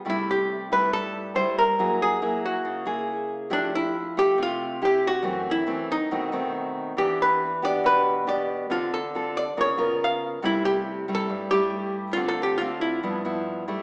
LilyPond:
<<
  \new Staff \with { instrumentName = "Hollow-body jazz guitar" } { \time 4/4 \key c \major \tempo 4 = 139 e'8 g'4 b'8 a'4 c''8 bes'8~ | bes'8 gis'4 fis'4 r4. | d'8 e'4 g'8 f'4 g'8 fis'8~ | fis'8 e'4 ees'4 r4. |
g'8 b'4 d''8 b'4 d''8 r8 | f'8 a'4 d''8 des''4 f''8 r8 | e'8 g'8~ \tuplet 3/2 { g'8. r16 a'8~ } a'8 g'4. | \tuplet 3/2 { f'8 a'8 g'8 } f'8 e'4. r4 | }
  \new Staff \with { instrumentName = "Nylon-string guitar" } { \time 4/4 \key c \major << { <g a e'>4. <g a e'>4. <g a e'>8 r8 | <ais e' gis'>4 <ais e' gis'>4. <ais e' gis'>4. | <a e' g'>4 r8 <a g'>4. <a e' g'>8 r8 | <e a c'>4 <e a c'>8 r8 <dis a c'>8 <dis a c'>4. |
<b d' g'>4 r8 <b d' g'>4. <b d' g'>4 | <c' f' a'>8 r8 <c' f' a'>8 r8 <b f' bes'>8 <b f' bes'>4. | <g a e'>4. <g a e'>4 <g a e'>4. | <a c' f'>4 <a c' f'>4 <f b e'>8 <f b e'>4 <g a e'>8 | } \\ { c2 g,2 | fis2 cis2 | f2 c2 | fis,2 b,2 |
e2 b,2 | d2 des2 | c2 g,2 | d2 g,2 | } >> }
>>